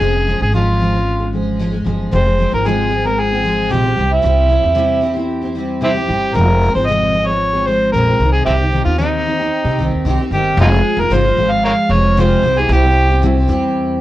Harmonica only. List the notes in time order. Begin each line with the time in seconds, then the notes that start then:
Already playing: G#4
0.42 G#4
0.55 F4
2.14 C5
2.54 A#4
2.67 G#4
3.06 A#4
3.20 G#4
3.71 G4
4.12 E4
5.84 C4 E4 G4
6.35 A#4
6.75 C5
6.87 D#5
7.26 C#5
7.66 C5
7.92 A#4
8.32 G#4
8.46 C4 E4 G4
8.85 F4
8.98 D#4
10.33 G4
10.60 D#4 F4 G#4
11.00 A#4
11.14 C5
11.52 F5
11.65 A#4 C#5 F5
11.92 C#5
12.20 C5
12.59 G#4
12.72 G4